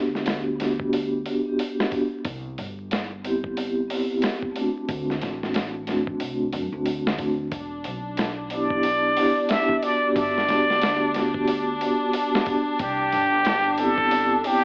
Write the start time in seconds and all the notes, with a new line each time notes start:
Already playing: D2 B3 D4 F#4 G4
0.15 snare
0.26 snare, open hi-hat
0.56 B3 D4
0.60 F#4 G4, snare, open hi-hat
0.80 kick
0.93 open hi-hat
1.25 open hi-hat
1.45 B3 D4 F#4 G4
1.59 open hi-hat
1.80 snare
1.90 B3 D4 F#4, kick, open hi-hat
1.94 G4
2.24 C2, kick, open hi-hat
2.58 G1, open hi-hat
2.91 snare, open hi-hat
3.22 B3 C4 E4, open hi-hat
3.26 G4
3.44 kick
3.57 open hi-hat
3.88 B3 C4 E4 G4, open hi-hat
4.22 snare, open hi-hat
4.43 kick
4.52 A3 C4, open hi-hat
4.57 D4 F#4
4.89 D2, kick, open hi-hat
5.10 snare
5.21 A1, snare, open hi-hat
5.43 snare
5.54 snare, open hi-hat
5.83 A3 C4
5.87 D4 F#4, snare, open hi-hat
6.07 kick
6.20 C2, open hi-hat
6.52 F#2, open hi-hat
6.71 D2 A3 C4 D4
6.76 F#4
6.86 open hi-hat
7.07 snare
7.17 A3 C4 D4 F#4, kick, open hi-hat
7.52 E1 D4, kick, open hi-hat
7.84 B1, open hi-hat
8.17 snare, open hi-hat
8.49 B3 D4 E4 D5, open hi-hat
8.53 G4
8.70 kick
8.83 open hi-hat
9.15 B3 D4 E4 G4, open hi-hat
9.49 E5, snare, open hi-hat
9.69 kick
9.81 D4 F#4 D5, open hi-hat
9.86 G4
10.16 G1 D5, kick, open hi-hat
10.38 snare
10.48 D2, snare, open hi-hat
10.70 snare
10.82 snare, open hi-hat
11.11 B3 D4, open hi-hat
11.16 F#4 G4, snare
11.34 kick
11.48 open hi-hat
11.81 open hi-hat
12.01 F#4 G4
12.13 open hi-hat
12.35 snare
12.44 B3 D4 F#4 G4, kick, open hi-hat
12.79 C2 G4, kick, open hi-hat
13.12 G1, open hi-hat
13.45 snare, open hi-hat
13.76 B3 C4 E4 G4 A4, open hi-hat
13.98 kick
14.11 open hi-hat
14.42 B3 C4 E4, open hi-hat
14.46 G4